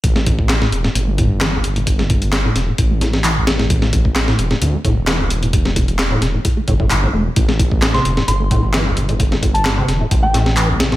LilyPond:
<<
  \new Staff \with { instrumentName = "Synth bell" } { \time 4/4 \key a \minor \tempo 4 = 131 r1 | r1 | r1 | r1 |
r4 r16 c'''8 r16 c'''8 r4. | r8. a''8 r4 g''8. r4 | }
  \new Staff \with { instrumentName = "Acid bass" } { \clef bass \time 4/4 \key a \minor a,16 a16 a,16 r8 a,16 d16 a,16 a,16 a16 a,16 b,16 e16 a,,16 d16 a,16 | a,16 a16 a,16 r8 a,16 d16 a,16 a,16 a16 a,16 b,16 e16 a,,16 d16 a,16 | a,16 a16 a,16 r8 a,16 d16 a,16 a,16 a16 a,16 b,16 e16 a,,16 d16 a,16 | a,16 a16 a,16 r8 a,16 d16 a,16 a,16 a16 a,16 a,16 a,16 a,,16 a16 d16 |
a,16 a16 a,16 r8 c16 d16 a,16 a,16 a16 a,16 b,16 e16 a,,16 d16 a,16 | a,16 a16 a,16 r8 c16 d16 a,16 a,16 a16 a,16 b,16 e16 a,,16 d16 a,16 | }
  \new Staff \with { instrumentName = "Detuned saw bass" } { \clef bass \time 4/4 \key a \minor a,,4. e,,8 g,,2~ | g,,4. e,,8 a,,2~ | a,,4. e,,8 d,8 e,,4.~ | e,,4. e,,8 r8 g,,4 e,,8 |
a,,4. e,,8 g,,2~ | g,,4. e,,8 a,,2 | }
  \new DrumStaff \with { instrumentName = "Drums" } \drummode { \time 4/4 <hh bd>16 sn16 <hh bd>16 bd16 <hc hh sn>16 sn16 hh16 sn16 hh8 <hh bd>8 <hc hh sn>8 hh16 hh16 | <hh bd>16 sn16 <hh bd>16 hh16 <hc hh sn>8 <hh sn>8 <hh bd>8 <hh sn>16 sn16 <hc hh>8 <hh sn>16 sn16 | <hh bd>16 sn16 <hh bd>16 bd16 <hc hh sn>16 sn16 hh16 sn16 hh8 <hh bd>8 <hc hh sn>8 hh16 hh16 | <hh bd>16 sn16 <hh bd>16 hh16 <hc hh sn>8 <hh sn>8 <hh bd>8 <hh bd>16 bd16 <hc hh>4 |
<hh bd>16 sn16 <hh bd>16 bd16 <hc hh sn>16 sn16 hh16 sn16 hh8 <hh bd>8 <hc hh sn>8 hh16 hh16 | <hh bd>16 sn16 <hh bd>16 hh16 <hc hh sn>8 <hh sn>8 <hh bd>8 <hh sn>16 sn16 <hc hh>8 <hh sn>16 sn16 | }
>>